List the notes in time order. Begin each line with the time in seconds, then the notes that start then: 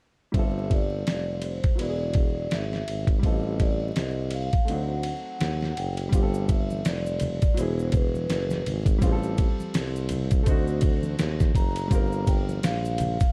0.32 G1 G3 C4 E5, kick, ride
0.36 F4 A4
0.71 D5, kick, ride
1.07 F1, snare, hi-hat pedal, ride
1.42 C5, ride
1.64 E1, kick, ride
1.75 E1 F#3 B3, ride
1.80 E4 F#4 D5
1.89 G#4
2.13 kick, ride
2.51 G#1 E5, snare, hi-hat pedal, ride
2.73 snare
2.87 G#1, ride
3.07 kick, ride
3.19 G3 C4, kick
3.23 A1 F4 A4 D#5, ride
3.60 D5, kick, ride
3.82 D#5
3.96 C2, snare, hi-hat pedal, ride
4.31 F5, ride
4.53 D2, kick, ride
4.65 D2 A3 C4, ride
4.70 F#3 D#4 F#5
5.03 ride
5.41 D#2, snare, hi-hat pedal, ride
5.62 snare
5.72 F#5
5.77 F#1 G5, ride
5.97 ride
6.09 G1 G3 C4, kick, ride
6.13 F4 G4, maracas
6.22 A4
6.34 maracas
6.49 E5, kick, ride, maracas
6.70 high conga, maracas
6.85 F1 D5, snare, hi-hat pedal, ride, maracas
7.06 maracas
7.20 ride, low conga, maracas
7.42 E1, kick, ride, maracas
7.54 E1 B2 F#3 C5, ride, maracas
7.59 E4 G#4
7.79 maracas
7.92 B4, kick, ride, low conga, maracas
8.15 high conga, maracas
8.30 F#1, snare, hi-hat pedal, ride, maracas
8.50 snare, high conga, maracas
8.66 G#1, ride, low conga, maracas
8.86 kick, ride, maracas
8.98 A1 G3 C4, kick, ride, maracas
9.03 F4 G#4
9.12 A4
9.23 maracas
9.38 kick, ride, maracas
9.60 high conga, maracas
9.74 C2, snare, hi-hat pedal, ride, maracas
9.96 maracas
10.09 ride, low conga, maracas
10.31 kick, ride, maracas
10.43 D2 A3 C4, kick, ride, maracas
10.48 D#4 F#4
10.68 maracas
10.81 kick, ride, low conga, maracas
11.03 high conga, maracas
11.19 D#2, snare, hi-hat pedal, ride, maracas
11.40 kick, snare, high conga, maracas
11.55 F#1 A#5, kick, ride, low conga, maracas
11.76 ride, maracas
11.88 G1 G3 C4, kick, ride
11.92 F4 A#4, maracas
12.12 maracas
12.27 G5, kick, ride, maracas
12.49 high conga, maracas
12.63 A#1 F5, snare, hi-hat pedal, ride, maracas
12.85 maracas
12.98 ride, low conga, maracas
13.20 A1, kick, ride, maracas